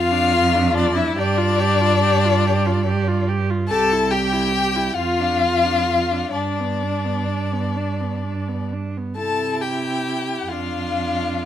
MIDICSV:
0, 0, Header, 1, 5, 480
1, 0, Start_track
1, 0, Tempo, 843882
1, 659, Time_signature, 6, 3, 24, 8
1, 2573, Tempo, 903614
1, 3533, Tempo, 949367
1, 4973, Tempo, 886263
1, 5453, Tempo, 839161
1, 6246, End_track
2, 0, Start_track
2, 0, Title_t, "Violin"
2, 0, Program_c, 0, 40
2, 0, Note_on_c, 0, 77, 115
2, 431, Note_off_c, 0, 77, 0
2, 439, Note_on_c, 0, 74, 96
2, 552, Note_on_c, 0, 76, 98
2, 561, Note_off_c, 0, 74, 0
2, 665, Note_off_c, 0, 76, 0
2, 675, Note_on_c, 0, 74, 112
2, 1840, Note_off_c, 0, 74, 0
2, 2095, Note_on_c, 0, 81, 100
2, 2335, Note_on_c, 0, 79, 98
2, 2343, Note_off_c, 0, 81, 0
2, 2799, Note_on_c, 0, 77, 93
2, 2806, Note_off_c, 0, 79, 0
2, 3527, Note_off_c, 0, 77, 0
2, 3530, Note_on_c, 0, 74, 66
2, 4714, Note_off_c, 0, 74, 0
2, 4967, Note_on_c, 0, 81, 84
2, 5207, Note_on_c, 0, 79, 75
2, 5215, Note_off_c, 0, 81, 0
2, 5695, Note_on_c, 0, 77, 78
2, 5704, Note_off_c, 0, 79, 0
2, 6246, Note_off_c, 0, 77, 0
2, 6246, End_track
3, 0, Start_track
3, 0, Title_t, "Violin"
3, 0, Program_c, 1, 40
3, 0, Note_on_c, 1, 65, 91
3, 421, Note_on_c, 1, 62, 93
3, 429, Note_off_c, 1, 65, 0
3, 540, Note_off_c, 1, 62, 0
3, 544, Note_on_c, 1, 64, 81
3, 668, Note_on_c, 1, 62, 100
3, 677, Note_off_c, 1, 64, 0
3, 1859, Note_off_c, 1, 62, 0
3, 2093, Note_on_c, 1, 69, 103
3, 2339, Note_on_c, 1, 67, 84
3, 2348, Note_off_c, 1, 69, 0
3, 2802, Note_off_c, 1, 67, 0
3, 2805, Note_on_c, 1, 65, 95
3, 3519, Note_off_c, 1, 65, 0
3, 3539, Note_on_c, 1, 62, 70
3, 4719, Note_off_c, 1, 62, 0
3, 4967, Note_on_c, 1, 69, 75
3, 5206, Note_on_c, 1, 67, 62
3, 5214, Note_off_c, 1, 69, 0
3, 5688, Note_on_c, 1, 65, 75
3, 5696, Note_off_c, 1, 67, 0
3, 6246, Note_off_c, 1, 65, 0
3, 6246, End_track
4, 0, Start_track
4, 0, Title_t, "Viola"
4, 0, Program_c, 2, 41
4, 0, Note_on_c, 2, 65, 65
4, 65, Note_on_c, 2, 62, 63
4, 73, Note_off_c, 2, 65, 0
4, 188, Note_on_c, 2, 65, 68
4, 196, Note_off_c, 2, 62, 0
4, 309, Note_on_c, 2, 62, 63
4, 318, Note_off_c, 2, 65, 0
4, 425, Note_off_c, 2, 62, 0
4, 428, Note_on_c, 2, 65, 74
4, 542, Note_on_c, 2, 62, 67
4, 551, Note_off_c, 2, 65, 0
4, 658, Note_off_c, 2, 62, 0
4, 662, Note_on_c, 2, 67, 80
4, 781, Note_on_c, 2, 65, 69
4, 789, Note_off_c, 2, 67, 0
4, 907, Note_on_c, 2, 67, 76
4, 915, Note_off_c, 2, 65, 0
4, 1029, Note_on_c, 2, 65, 71
4, 1038, Note_off_c, 2, 67, 0
4, 1143, Note_off_c, 2, 65, 0
4, 1151, Note_on_c, 2, 67, 76
4, 1278, Note_on_c, 2, 65, 67
4, 1287, Note_off_c, 2, 67, 0
4, 1399, Note_on_c, 2, 67, 72
4, 1407, Note_off_c, 2, 65, 0
4, 1512, Note_on_c, 2, 65, 65
4, 1521, Note_off_c, 2, 67, 0
4, 1624, Note_off_c, 2, 65, 0
4, 1627, Note_on_c, 2, 67, 69
4, 1746, Note_on_c, 2, 65, 62
4, 1755, Note_off_c, 2, 67, 0
4, 1865, Note_on_c, 2, 67, 68
4, 1874, Note_off_c, 2, 65, 0
4, 1988, Note_on_c, 2, 65, 60
4, 1997, Note_off_c, 2, 67, 0
4, 2101, Note_off_c, 2, 65, 0
4, 2113, Note_on_c, 2, 67, 69
4, 2232, Note_on_c, 2, 64, 58
4, 2240, Note_off_c, 2, 67, 0
4, 2345, Note_on_c, 2, 67, 68
4, 2354, Note_off_c, 2, 64, 0
4, 2460, Note_on_c, 2, 64, 60
4, 2469, Note_off_c, 2, 67, 0
4, 2576, Note_off_c, 2, 64, 0
4, 2584, Note_on_c, 2, 67, 68
4, 2696, Note_on_c, 2, 64, 56
4, 2704, Note_off_c, 2, 67, 0
4, 2807, Note_off_c, 2, 64, 0
4, 2822, Note_on_c, 2, 65, 64
4, 2932, Note_on_c, 2, 62, 54
4, 2940, Note_off_c, 2, 65, 0
4, 3050, Note_on_c, 2, 65, 54
4, 3058, Note_off_c, 2, 62, 0
4, 3172, Note_on_c, 2, 62, 48
4, 3180, Note_off_c, 2, 65, 0
4, 3290, Note_off_c, 2, 62, 0
4, 3293, Note_on_c, 2, 65, 53
4, 3417, Note_on_c, 2, 62, 48
4, 3425, Note_off_c, 2, 65, 0
4, 3536, Note_off_c, 2, 62, 0
4, 3546, Note_on_c, 2, 62, 53
4, 3669, Note_on_c, 2, 59, 49
4, 3676, Note_off_c, 2, 62, 0
4, 3783, Note_on_c, 2, 62, 50
4, 3790, Note_off_c, 2, 59, 0
4, 3896, Note_on_c, 2, 59, 47
4, 3904, Note_off_c, 2, 62, 0
4, 4011, Note_off_c, 2, 59, 0
4, 4019, Note_on_c, 2, 62, 50
4, 4136, Note_on_c, 2, 59, 43
4, 4143, Note_off_c, 2, 62, 0
4, 4254, Note_on_c, 2, 62, 50
4, 4262, Note_off_c, 2, 59, 0
4, 4380, Note_on_c, 2, 59, 44
4, 4387, Note_off_c, 2, 62, 0
4, 4496, Note_off_c, 2, 59, 0
4, 4502, Note_on_c, 2, 62, 45
4, 4620, Note_on_c, 2, 59, 42
4, 4627, Note_off_c, 2, 62, 0
4, 4745, Note_on_c, 2, 62, 47
4, 4753, Note_off_c, 2, 59, 0
4, 4867, Note_on_c, 2, 59, 41
4, 4875, Note_off_c, 2, 62, 0
4, 4978, Note_off_c, 2, 59, 0
4, 4986, Note_on_c, 2, 64, 56
4, 5714, Note_on_c, 2, 62, 51
4, 5722, Note_off_c, 2, 64, 0
4, 6246, Note_off_c, 2, 62, 0
4, 6246, End_track
5, 0, Start_track
5, 0, Title_t, "Cello"
5, 0, Program_c, 3, 42
5, 0, Note_on_c, 3, 41, 89
5, 658, Note_off_c, 3, 41, 0
5, 662, Note_on_c, 3, 43, 87
5, 2101, Note_on_c, 3, 36, 82
5, 2110, Note_off_c, 3, 43, 0
5, 2805, Note_off_c, 3, 36, 0
5, 2810, Note_on_c, 3, 41, 75
5, 3521, Note_off_c, 3, 41, 0
5, 3537, Note_on_c, 3, 43, 63
5, 4848, Note_off_c, 3, 43, 0
5, 4975, Note_on_c, 3, 48, 56
5, 5675, Note_off_c, 3, 48, 0
5, 5694, Note_on_c, 3, 41, 62
5, 6246, Note_off_c, 3, 41, 0
5, 6246, End_track
0, 0, End_of_file